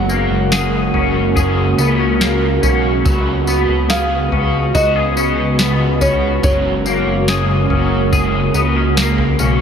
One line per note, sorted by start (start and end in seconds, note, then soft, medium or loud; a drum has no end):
0.00 0.28 F#1 loud
0.00 3.01 C#3 medium
0.00 3.05 F#3 medium
0.00 0.10 G#3 medium
0.00 3.01 G#3 medium
0.00 3.02 A#3 medium
0.00 0.11 C#4 medium
0.00 0.94 C#4 medium
0.00 0.11 F#4 medium
0.00 9.61 F#4 medium
0.00 0.12 G#4 medium
0.00 2.59 F#5 loud
0.09 2.19 A#3 medium
0.09 0.53 F#4 soft
0.09 0.52 A#4 medium
0.09 tambourine medium
0.14 0.53 C#4 soft
0.30 0.91 F#1 loud
0.52 0.94 F#3 medium
0.52 0.95 G#3 medium
0.52 0.95 C#4 medium
0.52 0.95 F#4 medium
0.52 1.35 G#4 medium
0.52 0.93 A#4 medium
0.52 snare loud
0.52 tambourine medium
0.93 1.74 F#1 loud
0.93 1.78 C#4 medium
0.93 1.38 F#4 medium
0.93 1.36 A#4 medium
0.93 floor tom medium
0.99 1.36 C#4 soft
1.36 1.79 G#3 medium
1.36 1.79 C#4 medium
1.36 1.79 F#4 medium
1.36 3.89 G#4 medium
1.36 kick loud
1.36 floor tom medium
1.36 tambourine medium
1.41 1.77 A#4 medium
1.78 2.59 C#2 loud
1.78 1.99 B3 medium
1.78 2.22 F#4 medium
1.78 2.21 A#4 medium
1.78 tambourine medium
1.83 2.22 C#4 medium
1.99 2.62 C#4 medium
2.20 2.63 F#3 loud
2.20 2.64 G#3 medium
2.20 3.14 A#3 medium
2.20 2.64 C#4 medium
2.20 2.64 F#4 loud
2.20 2.61 A#4 loud
2.20 snare loud
2.20 tambourine medium
2.63 3.03 B1 loud
2.63 3.51 C#4 medium
2.63 3.06 F#4 medium
2.63 3.05 A#4 medium
2.63 floor tom medium
2.63 tambourine medium
2.67 3.06 C#4 medium
3.05 3.66 C#2 loud
3.05 9.61 C#3 medium
3.05 3.48 C#3 medium
3.05 6.43 F#3 medium
3.05 9.61 G#3 medium
3.05 3.48 G#3 loud
3.05 6.40 B3 medium
3.05 3.48 B3 loud
3.05 3.48 F#4 loud
3.05 3.46 B4 loud
3.05 kick loud
3.05 floor tom loud
3.05 tambourine medium
3.47 5.58 B3 medium
3.47 3.91 F#4 medium
3.47 3.90 B4 medium
3.47 tambourine medium
3.52 3.90 B3 soft
3.69 4.29 C#2 medium
3.89 4.32 C#3 medium
3.89 4.33 G#3 medium
3.89 4.33 B3 medium
3.89 4.33 F#4 medium
3.89 4.74 G#4 medium
3.89 4.30 B4 medium
3.89 4.77 F5 loud
3.89 snare loud
3.89 tambourine medium
4.31 4.72 C#2 loud
4.31 5.17 C#4 medium
4.31 4.76 F#4 medium
4.31 4.74 B4 medium
4.31 floor tom medium
4.36 4.74 B3 soft
4.73 6.40 C#2 loud
4.73 5.16 G#3 medium
4.73 5.17 B3 medium
4.73 4.96 F#4 medium
4.73 5.17 F#4 medium
4.73 6.05 D#5 loud
4.73 kick loud
4.73 floor tom medium
4.73 tambourine medium
4.78 5.14 B4 medium
4.96 6.52 G#4 medium
5.15 6.01 C#4 medium
5.15 5.59 F#4 soft
5.15 5.58 B4 medium
5.15 tambourine medium
5.20 5.58 B3 soft
5.58 6.01 C#3 medium
5.58 6.01 G#3 medium
5.58 6.52 B3 medium
5.58 6.02 B3 medium
5.58 6.01 F#4 loud
5.58 5.98 B4 loud
5.58 snare loud
5.58 tambourine medium
6.00 7.70 C#4 medium
6.00 6.44 F#4 soft
6.00 6.43 B4 medium
6.00 6.42 C#5 medium
6.00 floor tom medium
6.00 tambourine medium
6.05 6.44 B3 soft
6.42 7.04 F#1 loud
6.42 6.85 F#3 medium
6.42 9.61 F#3 medium
6.42 6.86 G#3 medium
6.42 9.61 A#3 medium
6.42 6.86 C#4 medium
6.42 6.85 F#4 medium
6.42 6.83 A#4 medium
6.42 9.36 C#5 medium
6.42 kick loud
6.42 floor tom loud
6.42 tambourine medium
6.84 8.96 A#3 medium
6.84 7.29 F#4 soft
6.84 7.27 A#4 medium
6.84 tambourine medium
6.89 7.28 C#4 soft
7.07 7.67 F#1 loud
7.27 7.70 F#3 medium
7.27 7.70 G#3 medium
7.27 7.71 C#4 medium
7.27 7.71 F#4 medium
7.27 8.12 G#4 medium
7.27 7.68 A#4 medium
7.27 snare loud
7.27 tambourine medium
7.69 8.51 F#1 medium
7.69 8.54 C#4 medium
7.69 8.13 F#4 medium
7.69 8.12 A#4 medium
7.69 floor tom medium
7.74 8.12 C#4 medium
8.11 8.54 G#3 medium
8.11 8.55 C#4 medium
8.11 8.55 F#4 medium
8.11 9.61 G#4 medium
8.11 kick loud
8.11 floor tom medium
8.11 tambourine medium
8.16 8.53 A#4 medium
8.54 9.35 C#2 loud
8.54 8.76 B3 medium
8.54 8.98 F#4 medium
8.54 8.97 A#4 medium
8.54 tambourine medium
8.59 8.97 C#4 soft
8.76 9.38 C#4 medium
8.96 9.39 F#3 medium
8.96 9.40 G#3 loud
8.96 9.61 A#3 medium
8.96 9.40 C#4 loud
8.96 9.41 F#4 loud
8.96 9.38 A#4 loud
8.96 snare loud
8.96 tambourine medium
9.18 floor tom medium
9.39 9.61 B1 medium
9.39 9.61 C#4 medium
9.39 9.61 F#4 medium
9.39 9.61 A#4 medium
9.39 floor tom medium
9.39 tambourine medium
9.44 9.61 C#4 soft